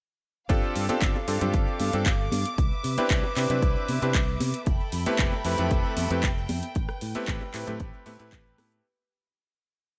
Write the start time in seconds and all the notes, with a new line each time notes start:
0.49 G1 C4 D4 F4 G4 A4 F5 D6, kick, closed hi-hat, maracas
0.64 maracas
0.76 G2, open hi-hat, high bongo, maracas
0.89 C4 D4 F4 G4 A4, muted fingered electric bass stroke, closed hi-hat, high conga, maracas
1.02 G1, kick, clap, closed hi-hat, maracas
1.15 high bongo, maracas
1.28 G2 C4 D4 F4 G4 A4, open hi-hat, maracas
1.41 G2 C4 D4 F4 G4 A4, closed hi-hat, low conga, maracas
1.54 G1, kick, closed hi-hat, maracas
1.67 maracas
1.80 G2, open hi-hat, high conga, maracas
1.93 G2 C4 D4 F4 G4 A4, closed hi-hat, maracas
2.06 G1, kick, clap, closed hi-hat, maracas
2.20 maracas
2.32 G2, open hi-hat, high conga, maracas
2.46 closed hi-hat, maracas
2.57 C2 B4 E5, kick, closed hi-hat, maracas
2.72 maracas
2.84 C3, open hi-hat, high bongo, maracas
2.97 C4 D4 E4 G4 B4, muted fingered electric bass stroke, closed hi-hat, high conga, maracas
3.10 C2, kick, clap, closed hi-hat, maracas
3.23 high bongo, maracas
3.36 C3 C4 D4 E4 G4 B4, clap, open hi-hat, maracas
3.50 C3 C4 D4 E4 G4 B4, closed hi-hat, low conga, maracas
3.62 C2, kick, closed hi-hat, maracas
3.76 maracas
3.88 C3, open hi-hat, high conga, maracas
4.02 C3 C4 D4 E4 G4 B4, closed hi-hat, maracas
4.15 C2, kick, clap, closed hi-hat, maracas
4.28 maracas
4.40 C3, open hi-hat, high conga, maracas
4.54 closed hi-hat, maracas
4.66 F1 A4 E5 G5 B5, kick, closed hi-hat, maracas
4.80 maracas
4.92 F2, open hi-hat, high bongo, maracas
5.06 A3 C4 E4 G4 B4, muted fingered electric bass stroke, closed hi-hat, high conga, maracas
5.19 F1, kick, clap, closed hi-hat, maracas
5.32 high bongo, maracas
5.45 F2 A3 C4 E4 G4 B4, open hi-hat, maracas
5.58 F2 A3 C4 E4 G4 B4, closed hi-hat, low conga, maracas
5.71 F1, kick, closed hi-hat, maracas
5.85 maracas
5.97 F2, open hi-hat, high conga, maracas
6.11 F2 A3 C4 E4 G4 B4, closed hi-hat, maracas
6.23 F1, kick, clap, closed hi-hat, maracas
6.38 maracas
6.48 F2, open hi-hat, high conga, maracas
6.62 closed hi-hat, maracas
6.75 A1 B4, kick, closed hi-hat, maracas
6.89 cross-stick, maracas
7.01 A2, open hi-hat, high bongo, maracas
7.15 A3 C4 E4 G4 B4, muted fingered electric bass stroke, closed hi-hat, high conga, maracas
7.28 A1, kick, clap, closed hi-hat, maracas
7.41 high bongo, maracas
7.54 A2 A3 C4 E4 G4 B4, clap, open hi-hat, maracas
7.67 A2 A3 C4 E4 G4 B4, closed hi-hat, low conga, maracas
7.80 A1, kick, closed hi-hat, maracas
7.94 maracas
8.06 A2 A3 C4 E4 G4 B4, open hi-hat, high conga, maracas
8.19 A2 A3 C4 E4 G4 B4, closed hi-hat, maracas
8.32 kick, clap, closed hi-hat
8.47 maracas
8.58 A2, cross-stick, open hi-hat, high conga, maracas
8.72 closed hi-hat